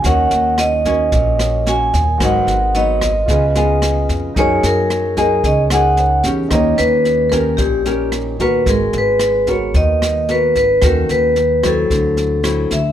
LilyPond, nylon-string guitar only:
\new Staff \with { instrumentName = "Nylon-string guitar" } { \time 4/4 \key gis \minor \tempo 4 = 111 << { <ais cis' fis'>4. <ais cis' fis'>4. <ais cis' fis'>8 r8 | <fis b dis'>8 r8 <fis b dis'>8 r8 <b eis' gis'>8 <b eis' gis'>4. | <ais dis' gis'>4. <ais dis' gis'>4 <ais dis' gis'>4 <cis' g'>8~ | <cis' g'>4. <cis' g' ais'>4 <cis' g' ais'>4 <b fis' ais'>8~ |
<b fis' ais'>4 r8 <b fis' ais'>4. <b fis' ais'>8 r8 | <cis' fis' a'>4 r8 <fis bis e'>4. <fis c' e'>8 r8 | } \\ { dis2 ais,2 | gis,2 cis2 | fis2 cis2 | dis2 ais,2 |
gis2 dis2 | dis2 d2 | } >> }